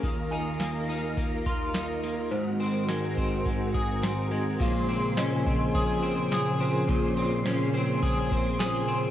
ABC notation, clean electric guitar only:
X:1
M:4/4
L:1/8
Q:1/4=105
K:Bbm
V:1 name="Clean electric guitar"
E, E B, E B, F E B, | A,, C A, C A, A C A, | B,, C D C A C A C | B,, C D C A C A C |]